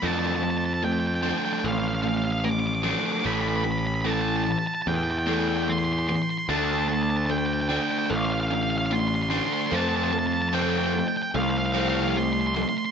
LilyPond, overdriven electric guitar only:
\new Staff \with { instrumentName = "Overdriven electric guitar" } { \clef bass \time 4/4 \key d \dorian \tempo 4 = 74 <f a d'>8 <f a>8 <f a>8 <f a d'>8 <f a>8 <f a>8 <f a>8 <f a d'>8 | <a, e a>8 <a, e>8 <a, e a>8 <a, e>8 <a, e>8 <a, e a>8 <a, e>8 <a, e>8 | <d a d'>8 <d a>8 <d a>8 <d a d'>8 <d a>8 <d a>8 <d a>8 <d a d'>8 | <f a c'>8 <f a>8 <f a c'>8 <f a>8 <f a>8 <f a c'>8 <f a>8 <f a>8 | }